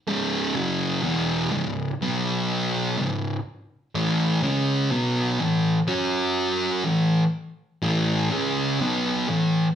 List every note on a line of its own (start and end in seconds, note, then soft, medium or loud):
0.08 0.54 C#2 medium
0.08 0.54 G#2 loud
0.08 0.54 C#3 loud
0.55 1.02 F#2 medium
0.55 1.02 C#3 medium
0.55 1.02 F#3 loud
1.02 1.50 E2 loud
1.02 1.50 B2 loud
1.02 1.50 E3 loud
1.52 1.90 C#2 medium
1.52 1.91 G#2 medium
2.01 2.96 B2 medium
2.01 2.96 F#3 medium
2.01 2.97 B3 loud
2.98 3.36 C#2 medium
2.98 3.36 G#2 medium
3.95 4.41 A2 loud
3.95 4.42 E3 loud
3.95 4.42 A3 loud
4.43 4.89 C#3 loud
4.43 4.90 G#3 medium
4.43 4.90 C#4 loud
4.91 5.38 B2 loud
4.91 5.38 F#3 medium
4.91 5.38 B3 loud
5.40 5.78 A2 medium
5.40 5.79 E3 medium
5.87 6.83 F#3 medium
5.87 6.83 C#4 medium
5.87 6.84 F#4 loud
6.84 7.23 A2 medium
6.84 7.24 E3 medium
7.82 8.29 A2 loud
7.82 8.29 E3 loud
7.82 8.30 A3 loud
8.31 8.78 C#3 loud
8.31 8.78 G#3 medium
8.31 8.78 C#4 loud
8.79 9.26 B2 medium
8.79 9.27 F#3 loud
8.79 9.27 B3 loud
9.28 9.67 A2 medium
9.28 9.67 E3 medium